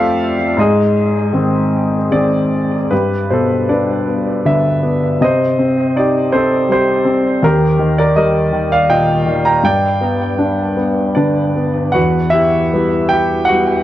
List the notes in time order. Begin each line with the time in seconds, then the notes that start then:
Already playing: F2 F3 A3 C4 F4 G4 A4 D5 E5 F5
0.57 G#2 D#5
0.61 G#4
1.33 D#3 G#3 C4
2.11 D#3 G#3 C4 D5
2.16 G#4
2.91 G2 G4 B4
3.31 B2 A4 C5
3.69 D4 B4 D5
4.08 B3
4.45 D3 B4 E5
4.83 B3
5.21 C3 C5 D#5
5.59 C4
5.96 D#4 G4 D5
6.32 C4 A4 C5
6.69 G3 C5
6.73 G4
7.05 C4
7.42 D#2 G4 A#4
7.79 D#3
7.98 A#4 D5
8.16 G3 A#4 D#5
8.53 D#3
8.72 D5 F5
8.89 A#2 D#5 G5
9.26 D#3
9.45 G5 A#5
9.63 G2 D5 G5
10.01 B3
10.39 D4
10.77 B3
11.15 D3 D4 B4 D5
11.56 B3
11.92 E2 F#4 B4 F#5
12.30 E4 G4 E5
12.73 G3 B3 E4
13.09 G5
13.13 G4
13.45 F#4 F#5
13.51 G3 B3 E4